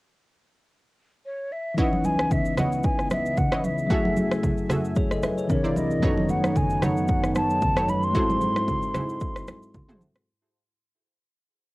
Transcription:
1.25 C#5
1.52 E5
1.74 C#2 C#3 E3 B3 C#4 E4 B4 C#5 D#5, kick, shaker
1.78 D#4 B4 F#5
1.93 high conga
2.04 G#5, high conga, shaker
2.19 cross-stick, high conga, shaker
2.31 E5, kick, low conga, shaker
2.45 shaker
2.57 E4 B4 C#5 D#5 F#5, cross-stick, high conga, low conga, shaker
2.72 shaker
2.83 G#5, kick, shaker
2.99 cross-stick, shaker
3.10 E5, cross-stick, high conga, shaker
3.26 shaker
3.37 F#5, kick, low conga, shaker
3.52 E4 B4 C#5 D#5, cross-stick, shaker
3.64 E5, high conga, shaker
3.78 shaker
3.87 F#2 F#3 A3 F#4 G#4 A4 E5 G#5, kick, shaker
3.92 E4 G#4
4.05 high conga
4.17 high conga, shaker
4.32 cross-stick, high conga, shaker
4.43 kick, low conga, shaker
4.58 shaker
4.70 F#4 G#4 A4 E5, cross-stick, high conga, low conga, shaker
4.85 shaker
4.96 G#4 C#5, kick, shaker
5.11 A4 D#5, cross-stick, shaker
5.23 B4 E5, cross-stick, high conga, shaker
5.38 G#4 C#5, shaker
5.48 C2 C3 E3 A#3 C4 D4 E4 A#4 C#5 D5, kick, low conga, shaker
5.64 E4 A#4 C5 D5, shaker
5.76 D#5, high conga, shaker
5.91 shaker
5.99 F#2 D#3 F#3 A3 B3 D#4 A4 B4 C#5, kick, shaker
6.05 C#4 A4
6.17 high conga
6.29 F#5, high conga, shaker
6.44 cross-stick, high conga, shaker
6.56 G#5, kick, low conga, shaker
6.70 shaker
6.82 F#3 D#4 A4 B4 C#5 F#5, cross-stick, high conga, low conga, shaker
6.97 shaker
7.08 kick, shaker
7.24 cross-stick, shaker
7.35 A5, cross-stick, high conga, shaker
7.50 shaker
7.62 kick, low conga, shaker
7.76 F#3 D#4 A4 B4 C#5, cross-stick, shaker
7.88 B5, high conga, shaker
8.03 C6, shaker
8.11 G#2 G#3 A3 E4 F#4 G#4 A4 C5, kick, shaker
8.15 E4 F#4 A4 C5
8.20 C4
8.30 high conga, shaker
8.41 high conga, shaker
8.56 cross-stick, high conga, shaker
8.68 kick, low conga, shaker
8.82 shaker
8.94 E4 F#4 G#4 A4 C5, cross-stick, high conga, low conga, shaker
9.09 shaker
9.20 kick, shaker
9.36 cross-stick, shaker
9.48 cross-stick, high conga, shaker
9.63 shaker
9.74 kick, low conga, shaker
9.89 E4 F#4 G#4 A4 C5, mid tom, shaker
10.01 high conga, shaker
10.15 cross-stick, shaker

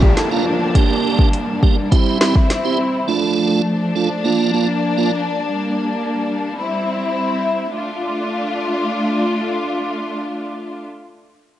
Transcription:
Already playing: A#1 F3 A#3 D4, downlifter
0.02 D4 G4, kick
0.17 E4 A4, snare, closed hi-hat
0.31 A#3 D4 F4 A#4
0.75 G3 A#3 D4 G4, kick, closed hi-hat
1.19 kick
1.33 closed hi-hat
1.62 A#3 D4 G4, kick
1.91 C4 E4 G4, kick, closed hi-hat
2.21 C4 E4 G4, snare
2.35 kick
2.50 snare, closed hi-hat
2.64 C4 E4 G4
3.08 F3 A3 D4 F4
3.95 A3 D4 F4
4.24 A#3 D4 F4
4.53 A#3 D4 F4
4.98 A#3 D4 F4
5.41 G3 A#3
6.58 C4 E4
7.74 A3 D4 F4

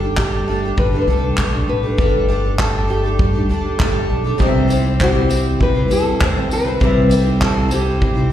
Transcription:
Already playing: G1 G3
0.01 D4 G4 A4
0.17 G3 D4 G4 A4, kick, clap
0.48 G3 A3 D4 G4 A4
0.63 D4 G4 A4
0.77 G1 G3 B4, kick
0.93 D4 G4 A4
1.02 B4
1.07 C2 G3 D4 G4 A4
1.37 B1 G3 A3 D4 G4 A4, kick, clap
1.52 D4 G4 A4
1.68 A1 D4 B4
1.83 D4 G4 A4
1.98 G1 G3 D4 G4 A4, kick
2.29 G3 D4 G4 A4
2.43 D4 G4 A4
2.59 G3 D4 G4 A4, kick, clap
2.88 G3 A3 D4 G4 A4
3.03 D4 G4 A4
3.19 G2 G3, kick
3.33 D4 G4 A4
3.49 D2 G3 D4 G4 A4
3.79 G1 G3 A3 D4 G4 A4, kick, clap
4.10 B1 D4
4.24 D4 G4 A4
4.38 C2 C3 E3 G3 C4 E4 G4 C5 D#5, kick
4.48 E5
4.67 G3 C4 E4 C5, tambourine
4.83 G3 C4 E4 C5
4.99 C3 E3 G3 C4 E4 G4 C5, kick, clap
5.28 G3 C4 E4 C5, tambourine
5.60 C2 G3 B4, kick
5.74 G3 C4 E4 C5
5.88 E2 G3 C4 E4 C5, tambourine
5.92 A4
6.19 D2 C3 E3 G3 C4 E4 C5, kick, clap
6.34 G3 C4 E4 C5
6.50 C2 E4 B4, tambourine
6.65 G3 C4 E4 C5
6.80 C2 C3 E3 G3 C4 E4 G4 E5, kick
7.09 G3 C4 E4 C5, tambourine
7.19 A4
7.24 G3 C4 E4 C5
7.41 C3 E3 G3 C4 E4 A4 C5, kick, clap
7.69 G3 C4 E4 C5, tambourine
7.74 G4
8.01 C3 G3, kick
8.14 G3 C4 E4 C5

